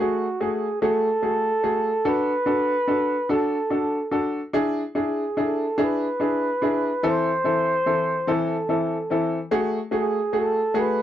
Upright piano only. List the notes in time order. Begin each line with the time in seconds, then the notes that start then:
0.00 A3 F#4 G#4
0.41 A3 F#4 G#4
0.82 A3 F#4 G#4
1.22 A3 F#4 G#4
1.63 A3 F#4 G#4
2.05 D4 F#4 A4
2.46 D4 F#4 A4
2.88 D4 F#4 A4
3.29 D4 F#4 A4
3.70 D4 F#4 A4
4.11 D4 F#4 A4
4.53 D4 E4 G#4
4.95 D4 E4 G#4
5.37 D4 E4 G#4
5.78 D4 E4 G#4
6.20 D4 E4 G#4
6.62 D4 E4 G#4
7.03 E3 C4 E4 A4
7.44 E3 C4 E4 A4
7.86 E3 C4 E4 A4
8.27 E3 C4 E4 A4
8.69 E3 C4 E4 A4
9.10 E3 C4 E4 A4
9.51 A3 F#4 G#4
9.91 A3 F#4 G#4
10.33 A3 F#4 G#4
10.74 A3 F#4 G#4